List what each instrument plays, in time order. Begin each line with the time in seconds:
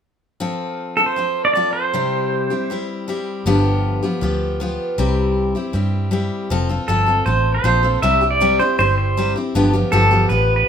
0.40 steel-string acoustic guitar F3 C4 F4 A4
0.97 steel-string acoustic guitar C4 F4 A4, pedal steel guitar A4
1.06 pedal steel guitar C5
1.16 steel-string acoustic guitar F3 C4 F4 A4
1.45 pedal steel guitar D5
1.54 steel-string acoustic guitar F3 C4 F4 A4, pedal steel guitar D5
1.73 pedal steel guitar C5
1.93 steel-string acoustic guitar C3 G3 C4 E4 G4
2.50 steel-string acoustic guitar C4 E4 G4
2.70 steel-string acoustic guitar G3 C4 E4 G4
3.08 steel-string acoustic guitar G3 C4 E4 G4
3.46 fingered electric bass G1, steel-string acoustic guitar G2 D3 F3 B3 F4 G4
4.03 steel-string acoustic guitar F3 B3 F4 G4
4.21 fingered electric bass D2, steel-string acoustic guitar F3 B3 F4 G4
4.60 steel-string acoustic guitar F3 B3 F4 G4
4.98 fingered electric bass C2, steel-string acoustic guitar C3 G3 C4 E4 G4
5.55 steel-string acoustic guitar C4 E4 G4
5.73 fingered electric bass G2, steel-string acoustic guitar G3 C4 E4 G4
6.11 steel-string acoustic guitar G3 C4 E4 G4
6.50 fingered electric bass F1, steel-string acoustic guitar F3 C4 F4 A4
6.69 steel-string acoustic guitar C4 F4 A4
6.88 fingered electric bass G1, steel-string acoustic guitar F3 C4 F4 A4, pedal steel guitar A4
7.06 steel-string acoustic guitar C4 F4 A4
7.26 fingered electric bass A1, steel-string acoustic guitar F3 C4 F4 A4, pedal steel guitar C5
7.55 pedal steel guitar C5
7.64 fingered electric bass A#1, steel-string acoustic guitar F3 C4 F4 A4
7.83 steel-string acoustic guitar C4 F4 A4
8.02 fingered electric bass C2, steel-string acoustic guitar C3 G3 C4 E4 G4, pedal steel guitar E5
8.21 steel-string acoustic guitar C4 E4 G4
8.30 pedal steel guitar D5
8.41 steel-string acoustic guitar C3 G3 C4 E4 G4
8.59 steel-string acoustic guitar C4 E4 G4, pedal steel guitar C5
8.78 fingered electric bass G1, steel-string acoustic guitar G3 C4 E4 G4, pedal steel guitar C5
8.98 pedal steel guitar C5
9.17 steel-string acoustic guitar C3 G3 C4 E4 G4
9.36 steel-string acoustic guitar C4 E4 G4
9.55 fingered electric bass G1, steel-string acoustic guitar G2 D3 F3 B3 F4 G4
9.73 steel-string acoustic guitar F3 B3 F4 G4
9.92 fingered electric bass G1, steel-string acoustic guitar G2 D3 F3 B3 F4 G4, pedal steel guitar A4
10.11 steel-string acoustic guitar F3 B3 F4 G4
10.29 fingered electric bass A1, steel-string acoustic guitar F3 B3 F4 G4, pedal steel guitar B4
10.56 pedal steel guitar B4